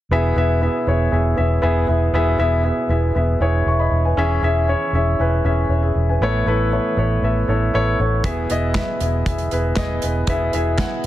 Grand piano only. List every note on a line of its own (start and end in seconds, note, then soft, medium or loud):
0.11 0.83 B2 medium
0.11 0.34 B3 medium
0.11 0.34 E4 medium
0.11 0.34 G#4 medium
0.11 0.35 E5 loud
0.36 0.59 B3 medium
0.36 0.59 E4 medium
0.36 0.60 G#4 medium
0.36 0.60 E5 medium
0.61 0.84 B3 medium
0.61 0.85 E4 medium
0.61 0.85 G#4 medium
0.61 0.85 E5 medium
0.87 1.10 B3 medium
0.87 1.10 E4 medium
0.87 1.10 G#4 medium
0.87 1.11 C#5 medium
1.12 1.35 B3 medium
1.12 1.35 E4 medium
1.12 1.35 G#4 medium
1.12 1.36 E5 medium
1.36 1.60 B3 medium
1.36 1.61 E4 medium
1.36 1.61 G#4 medium
1.36 1.61 E5 medium
1.62 1.86 B3 medium
1.62 1.86 E4 medium
1.62 1.86 G#4 medium
1.62 1.86 E5 medium
1.87 2.11 B3 medium
1.87 2.11 E4 medium
1.87 2.11 G#4 medium
1.87 2.12 E5 medium
2.14 2.86 B2 medium
2.14 2.37 B3 medium
2.14 2.37 E4 medium
2.14 2.37 G#4 medium
2.14 2.38 E5 loud
2.38 2.62 B3 medium
2.38 2.62 E4 medium
2.38 2.62 G#4 medium
2.38 2.63 E5 loud
2.64 2.87 B3 medium
2.64 2.87 E4 medium
2.64 2.88 G#4 medium
2.64 2.88 E5 medium
2.89 3.13 B3 medium
2.89 3.13 E4 medium
2.89 3.13 G#4 medium
2.89 3.13 E5 medium
3.15 3.38 B3 medium
3.15 3.39 E4 medium
3.15 3.39 G#4 medium
3.15 3.39 E5 medium
3.41 3.64 B3 medium
3.41 3.64 E4 medium
3.41 3.64 G#4 medium
3.41 3.64 C#5 medium
3.68 3.79 E5 soft
3.68 3.79 C#6 medium
3.79 4.04 D#5 soft
3.79 4.03 B5 medium
4.05 4.29 B4 soft
4.05 4.29 G#5 medium
4.17 4.90 E3 medium
4.17 4.40 C#4 medium
4.17 4.40 E4 medium
4.17 4.41 G#4 medium
4.17 4.41 E5 loud
4.43 4.66 C#4 medium
4.43 4.66 E4 medium
4.43 4.66 G#4 medium
4.43 4.67 E5 medium
4.68 4.91 C#4 medium
4.68 4.91 E4 medium
4.68 4.91 G#4 medium
4.68 4.92 C#5 medium
4.94 5.17 C#4 medium
4.94 5.17 E4 medium
4.94 5.17 G#4 medium
4.94 5.17 E5 medium
5.19 5.42 C#4 medium
5.19 5.42 E4 medium
5.19 5.43 G#4 medium
5.19 5.43 B4 medium
5.45 5.68 C#4 medium
5.45 5.68 E4 medium
5.45 5.68 G#4 medium
5.45 5.68 E5 medium
5.70 5.82 E4 soft
5.70 5.82 C#5 soft
5.83 6.07 G#4 medium
5.83 6.07 E5 medium
6.09 6.33 B4 soft
6.09 6.33 G#5 medium
6.22 6.94 A2 medium
6.22 6.94 E3 medium
6.22 6.44 B3 medium
6.22 6.45 E4 medium
6.22 6.45 A4 medium
6.22 6.45 C#5 loud
6.47 6.70 B3 medium
6.47 6.70 E4 medium
6.47 6.70 A4 medium
6.47 6.70 B4 medium
6.72 6.95 B3 medium
6.72 6.95 E4 medium
6.72 6.95 A4 medium
6.72 6.95 C#5 medium
6.97 7.20 B3 medium
6.97 7.20 E4 medium
6.97 7.21 A4 medium
6.97 7.21 C#5 medium
7.23 7.46 B3 medium
7.23 7.46 E4 medium
7.23 7.46 A4 medium
7.23 7.46 E5 medium
7.48 7.71 B3 medium
7.48 7.71 E4 medium
7.48 7.71 A4 medium
7.48 7.72 C#5 medium
7.74 7.97 B3 medium
7.74 7.97 E4 medium
7.74 7.97 A4 medium
7.74 7.97 C#5 loud
7.99 8.22 B3 medium
7.99 8.22 E4 medium
7.99 8.22 A4 medium
7.99 8.23 C#5 medium
8.24 8.97 B2 medium
8.24 8.47 B3 medium
8.24 8.47 E4 medium
8.24 8.48 G#4 medium
8.24 8.48 E5 medium
8.50 8.73 B3 medium
8.50 8.73 E4 medium
8.50 8.73 G#4 medium
8.50 8.74 D#5 loud
8.75 8.98 B3 medium
8.75 8.99 E4 medium
8.75 8.99 G#4 medium
8.75 8.99 E5 medium
9.01 9.24 B3 medium
9.01 9.24 E4 medium
9.01 9.24 G#4 medium
9.01 9.24 E5 medium
9.26 9.49 B3 medium
9.26 9.50 E4 medium
9.26 9.50 G#4 medium
9.26 9.50 E5 medium
9.52 9.75 B3 medium
9.52 9.75 E4 medium
9.52 9.75 G#4 medium
9.52 9.75 B4 medium
9.77 10.00 B3 medium
9.77 10.00 E4 medium
9.77 10.00 G#4 medium
9.77 10.01 D#5 medium
10.03 10.25 B3 medium
10.03 10.26 E4 medium
10.03 10.26 G#4 medium
10.03 10.26 B4 medium
10.29 11.00 B2 medium
10.29 10.51 B3 medium
10.29 10.51 E4 medium
10.29 10.51 G#4 medium
10.29 10.52 E5 loud
10.53 10.76 B3 medium
10.53 10.76 E4 medium
10.53 10.77 G#4 medium
10.53 10.77 E5 medium
10.79 11.02 B3 medium
10.79 11.02 E4 medium
10.79 11.02 G#4 medium
10.79 11.02 F#5 medium